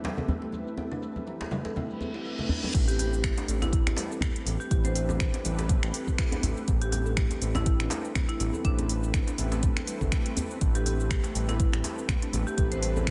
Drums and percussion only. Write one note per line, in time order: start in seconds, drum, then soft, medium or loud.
0.04 muted conga soft
0.04 djembe slap loud
0.04 high conga medium
0.04 cabasa medium
0.17 djembe tone medium
0.17 low conga medium
0.17 cabasa soft
0.28 high conga medium
0.28 djembe bass loud
0.28 cabasa soft
0.42 muted conga soft
0.52 high conga medium
0.52 djembe tone medium
0.52 cabasa medium
0.67 cabasa soft
0.77 muted conga medium
0.77 djembe tone medium
0.77 cabasa soft
0.92 low conga medium
0.92 cabasa soft
1.03 cabasa medium
1.16 high conga medium
1.16 djembe tone medium
1.16 cabasa soft
1.27 muted conga soft
1.27 cabasa soft
1.41 djembe slap medium
1.41 djembe tone medium
1.41 cabasa soft
1.51 high conga medium
1.51 low conga loud
1.51 cabasa medium
1.65 djembe slap medium
1.65 muted conga medium
1.65 cabasa soft
1.76 high conga medium
1.76 djembe tone medium
1.76 low conga medium
1.76 cabasa soft
1.90 cabasa soft
2.01 muted conga soft
2.01 djembe tone medium
2.01 cabasa medium
2.15 cabasa soft
2.26 cabasa soft
2.39 muted conga soft
2.39 djembe tone medium
2.39 low conga medium
2.49 djembe bass medium
2.49 cabasa medium
2.64 djembe tone medium
2.64 high conga medium
2.74 kick loud
2.74 closed hi-hat medium
2.74 crash loud
2.74 cabasa medium
2.88 closed hi-hat soft
2.88 cabasa soft
2.99 open hi-hat medium
2.99 djembe tone medium
2.99 cabasa medium
3.13 cabasa soft
3.24 finger snap loud
3.24 kick loud
3.24 closed hi-hat medium
3.24 djembe tone medium
3.24 cabasa medium
3.38 closed hi-hat soft
3.38 djembe slap medium
3.38 cabasa soft
3.48 open hi-hat medium
3.48 cabasa medium
3.62 closed hi-hat soft
3.62 djembe slap medium
3.62 djembe tone medium
3.62 cabasa soft
3.73 kick loud
3.73 closed hi-hat medium
3.73 cabasa medium
3.87 finger snap medium
3.87 closed hi-hat soft
3.87 djembe tone medium
3.97 open hi-hat medium
3.97 djembe slap loud
3.97 cabasa medium
4.12 cabasa soft
4.21 finger snap loud
4.21 kick loud
4.21 closed hi-hat medium
4.21 djembe tone medium
4.21 djembe bass loud
4.21 cabasa medium
4.36 closed hi-hat soft
4.45 open hi-hat medium
4.45 djembe tone medium
4.45 cabasa medium
4.61 cabasa soft
4.71 kick loud
4.71 closed hi-hat medium
4.71 cabasa medium
4.84 closed hi-hat soft
4.84 djembe tone medium
4.84 cabasa soft
4.95 open hi-hat medium
4.95 cabasa medium
5.09 djembe tone loud
5.09 cabasa soft
5.20 finger snap loud
5.20 kick loud
5.20 closed hi-hat medium
5.20 cabasa medium
5.34 closed hi-hat soft
5.34 djembe slap medium
5.34 cabasa soft
5.44 open hi-hat medium
5.44 djembe tone medium
5.44 cabasa medium
5.59 closed hi-hat soft
5.59 djembe slap medium
5.59 cabasa soft
5.69 kick loud
5.69 closed hi-hat medium
5.69 djembe tone medium
5.69 cabasa medium
5.83 finger snap medium
5.83 closed hi-hat soft
5.94 open hi-hat medium
5.94 cabasa loud
6.07 kick medium
6.07 djembe tone medium
6.07 cabasa soft
6.18 finger snap loud
6.18 kick loud
6.18 closed hi-hat medium
6.18 cabasa medium
6.32 closed hi-hat soft
6.32 djembe tone loud
6.43 open hi-hat medium
6.43 djembe bass medium
6.43 cabasa loud
6.57 cabasa soft
6.67 kick loud
6.67 closed hi-hat medium
6.67 djembe tone medium
6.67 cabasa medium
6.82 closed hi-hat soft
6.82 cabasa soft
6.92 open hi-hat medium
6.92 djembe tone medium
6.92 cabasa loud
7.06 cabasa soft
7.17 finger snap loud
7.17 kick loud
7.17 closed hi-hat medium
7.17 cabasa medium
7.30 closed hi-hat soft
7.30 djembe slap medium
7.30 djembe tone medium
7.30 cabasa soft
7.42 open hi-hat medium
7.42 cabasa loud
7.55 closed hi-hat soft
7.55 djembe slap medium
7.55 djembe tone loud
7.55 cabasa soft
7.66 kick loud
7.66 closed hi-hat medium
7.66 cabasa medium
7.80 finger snap medium
7.80 closed hi-hat soft
7.90 open hi-hat medium
7.90 djembe slap loud
7.90 djembe tone medium
7.90 cabasa loud
8.05 cabasa soft
8.15 finger snap loud
8.15 kick loud
8.15 closed hi-hat medium
8.15 djembe tone loud
8.15 djembe bass medium
8.15 cabasa medium
8.29 closed hi-hat soft
8.40 open hi-hat medium
8.40 cabasa loud
8.53 djembe tone medium
8.53 cabasa soft
8.65 kick loud
8.65 closed hi-hat medium
8.65 cabasa medium
8.79 closed hi-hat soft
8.79 djembe tone loud
8.79 cabasa soft
8.89 open hi-hat medium
8.89 cabasa medium
9.03 cabasa soft
9.14 finger snap loud
9.14 kick loud
9.14 closed hi-hat medium
9.14 djembe tone medium
9.14 cabasa medium
9.27 closed hi-hat soft
9.27 djembe slap medium
9.27 cabasa soft
9.38 open hi-hat medium
9.38 djembe tone medium
9.38 cabasa loud
9.52 closed hi-hat soft
9.52 djembe slap medium
9.52 cabasa soft
9.63 kick loud
9.63 closed hi-hat medium
9.63 cabasa medium
9.76 finger snap medium
9.76 closed hi-hat soft
9.76 djembe tone medium
9.87 open hi-hat medium
9.87 cabasa medium
10.01 kick medium
10.01 djembe tone medium
10.01 cabasa soft
10.12 finger snap loud
10.12 kick loud
10.12 closed hi-hat medium
10.12 cabasa medium
10.26 closed hi-hat soft
10.36 open hi-hat medium
10.36 djembe tone medium
10.36 djembe bass medium
10.36 cabasa loud
10.51 cabasa soft
10.61 kick loud
10.61 closed hi-hat medium
10.61 cabasa medium
10.75 closed hi-hat soft
10.75 cabasa soft
10.86 open hi-hat medium
10.86 djembe tone medium
10.86 cabasa medium
11.00 cabasa soft
11.10 finger snap loud
11.10 kick loud
11.10 closed hi-hat medium
11.10 djembe tone medium
11.10 cabasa medium
11.24 closed hi-hat soft
11.24 djembe slap medium
11.24 cabasa soft
11.35 open hi-hat medium
11.35 cabasa medium
11.48 closed hi-hat soft
11.48 djembe slap medium
11.48 djembe tone medium
11.48 cabasa soft
11.60 kick loud
11.60 closed hi-hat medium
11.60 cabasa medium
11.72 finger snap medium
11.72 closed hi-hat soft
11.72 djembe tone medium
11.84 open hi-hat medium
11.84 djembe slap loud
11.84 cabasa loud
11.98 cabasa soft
12.08 finger snap loud
12.08 kick loud
12.08 closed hi-hat medium
12.08 djembe tone medium
12.08 djembe bass loud
12.08 cabasa medium
12.22 closed hi-hat soft
12.33 open hi-hat medium
12.33 djembe tone medium
12.33 cabasa medium
12.47 cabasa soft
12.58 kick loud
12.58 closed hi-hat medium
12.58 cabasa soft
12.72 closed hi-hat soft
12.72 djembe tone medium
12.72 cabasa soft
12.83 open hi-hat medium
12.83 cabasa medium
12.97 djembe tone medium
12.97 cabasa soft
13.07 finger snap loud
13.07 kick loud
13.07 closed hi-hat medium
13.07 cabasa soft